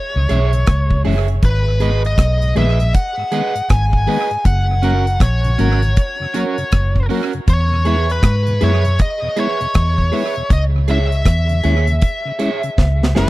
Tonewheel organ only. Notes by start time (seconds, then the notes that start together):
0.15 C#3
0.29 E3 G#3 C#4
0.53 C#3
0.90 C#3
1.04 E3 G#3 C#4
1.28 C#3
1.66 G#2
1.80 D#3 G#3 B3
2.41 G#2
2.55 D#3 G#3 B3
2.79 G#2
3.18 G#2
3.31 D#3 G#3 B3
3.55 G#2
3.93 G#2
4.07 D#3 G#3 B3
4.31 G#2
4.69 F#2 C#3
4.82 F#3 A#3 C#4
5.44 F#2 C#3
5.59 F#3 A#3 C#4
5.82 F#2 C#3
6.20 F#2 C#3
6.34 F#3 A#3 C#4
6.58 F#2 C#3
6.96 F#2 C#3
7.10 F#3 A#3 C#4
7.34 F#2 C#3
7.72 E2 B2
7.86 G#3 B3 E4
8.47 E2 B2
8.61 G#3 B3 E4
8.84 E2 B2
9.22 E2 B2
9.36 G#3 B3 E4
9.60 E2 B2
9.98 E2 B2
10.12 G#3 B3 E4
10.36 E2 B2
10.75 C#3
10.88 G#3 C#4 E4
11.50 C#3
11.64 G#3 C#4 E4
11.88 C#3
12.25 C#3
12.39 G#3 C#4 E4
12.64 C#3
13.01 C#3
13.15 G#3 C#4 E4